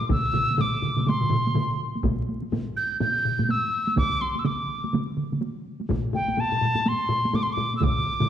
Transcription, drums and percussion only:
0.01 taiko high
0.09 taiko, taiko low-mid, taiko mid, taiko high
0.34 taiko low-mid, taiko mid, taiko high
0.51 taiko high
0.58 taiko low-mid, taiko mid, taiko high
0.82 taiko low-mid, taiko mid
0.96 taiko low-mid, taiko mid, taiko high
1.06 taiko low-mid, taiko mid, taiko high
1.21 taiko low-mid, taiko mid
1.29 taiko low-mid, taiko mid
1.47 taiko high
1.55 taiko low-mid, taiko mid, taiko high
1.95 taiko high
2.03 taiko, taiko low-mid, taiko high
2.29 taiko high
2.43 taiko high
2.52 taiko low-mid, taiko high
3.00 taiko low-mid, taiko high
3.25 taiko low-mid
3.39 taiko low-mid, taiko high
3.49 taiko high
3.87 taiko high
3.96 taiko, taiko mid, taiko high
4.21 taiko high
4.36 taiko high
4.45 taiko mid, taiko high
4.84 taiko high
4.93 taiko mid, taiko high
5.17 taiko mid
5.32 taiko mid, taiko high
5.41 taiko high
5.80 taiko high
5.89 taiko, taiko low-mid, taiko high
6.13 taiko low-mid, taiko high
6.28 taiko high
6.37 taiko low-mid, taiko high
6.52 taiko low-mid
6.61 taiko low-mid
6.75 taiko low-mid, taiko high
6.86 taiko high
7.09 taiko low-mid
7.25 taiko high
7.33 taiko low-mid, taiko high
7.57 taiko low-mid
7.74 taiko high
7.81 taiko, taiko low-mid, taiko mid, taiko high
8.20 taiko low-mid, taiko mid, taiko high

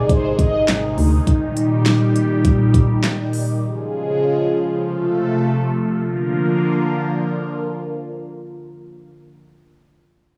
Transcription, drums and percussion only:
0.09 kick, closed hi-hat
0.39 kick, closed hi-hat
0.68 snare, clap, closed hi-hat
0.98 open hi-hat
1.27 kick, closed hi-hat
1.57 closed hi-hat
1.86 snare, closed hi-hat
2.16 closed hi-hat
2.45 kick, closed hi-hat
2.74 kick, closed hi-hat
3.04 snare, clap, closed hi-hat
3.33 open hi-hat

